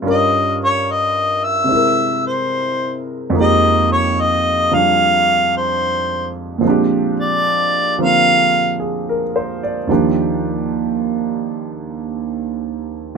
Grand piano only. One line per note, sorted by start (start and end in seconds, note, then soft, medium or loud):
0.02 1.67 G2 medium
0.02 1.68 G3 soft
0.02 1.69 C#4 soft
0.02 1.69 F4 soft
0.07 1.70 A#4 medium
1.64 3.32 C3 soft
1.64 3.33 G#3 soft
1.69 3.35 C4 soft
1.69 3.36 E4 soft
1.75 3.38 A#4 soft
3.30 6.60 F2 medium
3.30 4.70 F3 soft
3.34 6.60 G#3 soft
3.34 6.63 A#3 soft
3.38 6.64 D#4 soft
3.38 6.65 G4 medium
4.71 6.59 F3 soft
4.71 6.62 G3 soft
4.71 6.63 D4 soft
4.71 6.64 F4 soft
6.58 9.87 A#2 medium
6.58 7.97 F3 medium
6.58 9.89 G#3 medium
6.64 8.00 C4 soft
6.64 9.90 D4 medium
6.69 9.90 G4 medium
7.98 9.88 D3 soft
7.98 9.88 F3 soft
7.98 9.89 A#3 soft
7.98 9.90 C4 soft
7.98 9.90 F4 soft
8.80 9.22 G#4 soft
9.09 9.59 A#4 soft
9.36 9.77 C5 soft
9.63 10.05 D5 medium
9.87 13.13 D#2 medium
9.87 13.14 D#3 soft
9.87 13.14 F3 soft
9.91 13.17 D4 soft
9.91 13.15 G4 medium